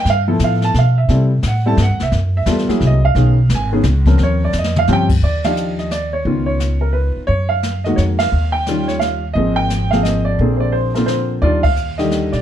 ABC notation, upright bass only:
X:1
M:3/4
L:1/8
Q:"Swing" 1/4=174
K:Ebmix
V:1 name="Upright bass" clef=bass
G,,2 =A,,2 =B,,2 | C,2 =A,,2 (3G,, =E,, C,, | _G,,2 _F,, z C,,2 | =B,,,2 ^G,,,2 ^C,,2 |
E,,2 F,,2 G,,2 | [K:Eb] E,,6 | _D,,4- D,, z | _G,,4 F,,2 |
E,,6 | A,,,6 | B,,,6 | E,,4- E,, B,, |]